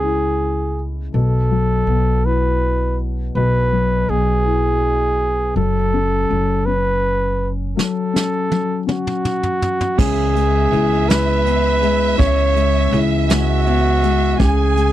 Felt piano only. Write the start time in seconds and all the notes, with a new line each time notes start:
Already playing: C#3 G#3 C#4
0.03 E4
1.14 B2
1.51 F#3
1.88 B3
2.25 E4
3.36 B2
3.72 F#3
4.09 B3
4.45 E4
5.56 F#3
5.94 C#4
6.30 F#3
6.67 C#4
7.77 F#3
8.14 C#4
8.50 F#3
8.87 C#4
9.98 C#3
10.35 G#3
10.72 E4
11.09 G#3
11.45 B3
11.82 G#3
12.18 C#3
12.55 G#3
12.93 E4
13.30 G#3
13.66 B3
14.03 G#3
14.39 C#3
14.76 G#3